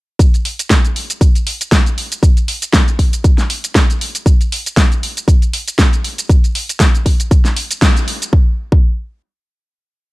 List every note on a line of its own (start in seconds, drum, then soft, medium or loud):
0.19 kick loud
0.19 closed hi-hat medium
0.19 shaker medium
0.34 closed hi-hat soft
0.34 shaker soft
0.45 open hi-hat loud
0.59 closed hi-hat medium
0.59 shaker medium
0.70 kick loud
0.70 snare loud
0.70 closed hi-hat medium
0.70 shaker medium
0.85 closed hi-hat soft
0.85 shaker soft
0.96 open hi-hat medium
1.10 closed hi-hat medium
1.10 shaker medium
1.21 kick loud
1.21 closed hi-hat medium
1.21 shaker medium
1.35 closed hi-hat soft
1.35 shaker soft
1.47 open hi-hat loud
1.61 closed hi-hat medium
1.61 shaker medium
1.72 kick loud
1.72 snare loud
1.72 closed hi-hat medium
1.72 shaker medium
1.86 closed hi-hat soft
1.86 shaker soft
1.98 open hi-hat medium
2.12 closed hi-hat medium
2.12 shaker medium
2.23 kick loud
2.23 closed hi-hat medium
2.23 shaker medium
2.37 closed hi-hat soft
2.37 shaker soft
2.48 open hi-hat loud
2.62 closed hi-hat medium
2.62 shaker medium
2.73 kick loud
2.73 snare loud
2.73 closed hi-hat medium
2.73 shaker medium
2.88 closed hi-hat soft
2.88 shaker soft
2.99 kick medium
2.99 open hi-hat medium
3.13 closed hi-hat medium
3.13 shaker medium
3.24 kick loud
3.24 closed hi-hat medium
3.24 shaker medium
3.38 snare soft
3.38 closed hi-hat soft
3.38 shaker soft
3.50 open hi-hat loud
3.64 closed hi-hat medium
3.64 shaker medium
3.75 kick loud
3.75 snare loud
3.75 closed hi-hat soft
3.75 shaker medium
3.90 closed hi-hat soft
3.90 shaker soft
4.01 open hi-hat loud
4.15 closed hi-hat medium
4.15 shaker medium
4.26 kick loud
4.26 closed hi-hat medium
4.26 shaker medium
4.41 closed hi-hat soft
4.41 shaker soft
4.52 open hi-hat loud
4.66 closed hi-hat medium
4.66 shaker medium
4.77 kick loud
4.77 snare loud
4.77 closed hi-hat medium
4.77 shaker medium
4.92 closed hi-hat soft
4.92 shaker soft
5.03 open hi-hat medium
5.17 closed hi-hat medium
5.17 shaker medium
5.28 kick loud
5.28 closed hi-hat soft
5.28 shaker medium
5.42 closed hi-hat soft
5.42 shaker soft
5.53 open hi-hat loud
5.68 closed hi-hat medium
5.68 shaker medium
5.79 kick loud
5.79 snare loud
5.79 closed hi-hat soft
5.79 shaker soft
5.93 closed hi-hat soft
5.93 shaker soft
6.04 open hi-hat loud
6.18 closed hi-hat soft
6.18 shaker medium
6.29 kick loud
6.29 closed hi-hat medium
6.29 shaker medium
6.44 closed hi-hat soft
6.44 shaker soft
6.55 open hi-hat loud
6.69 closed hi-hat medium
6.69 shaker medium
6.80 kick loud
6.80 snare loud
6.80 closed hi-hat medium
6.80 shaker medium
6.95 closed hi-hat soft
6.95 shaker soft
7.06 kick medium
7.06 open hi-hat medium
7.20 closed hi-hat soft
7.20 shaker medium
7.31 kick loud
7.31 closed hi-hat soft
7.31 shaker medium
7.45 snare soft
7.45 closed hi-hat soft
7.45 shaker soft
7.56 open hi-hat loud
7.71 closed hi-hat medium
7.71 shaker medium
7.82 kick loud
7.82 snare loud
7.82 closed hi-hat soft
7.82 shaker medium
7.97 closed hi-hat soft
7.97 shaker soft
8.08 open hi-hat loud
8.22 closed hi-hat soft
8.22 shaker medium
8.33 kick loud
8.72 kick loud